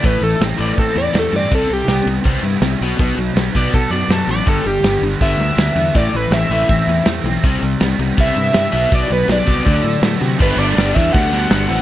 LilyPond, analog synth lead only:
\new Staff \with { instrumentName = "Analog synth lead" } { \time 4/4 \key g \major \tempo 4 = 162 b'8 a'8 r8 d''8 a'8 d''8 a'8 d''8 | a'8 g'4 r2 r8 | r4. d''8 a'8 d''8 a'8 d''8 | a'8 g'4 r8 e''2 |
d''8 b'8 e''2 r4 | r2 e''2 | d''8 b'8 d''2 r4 | b'8 d''4 e''8 fis''2 | }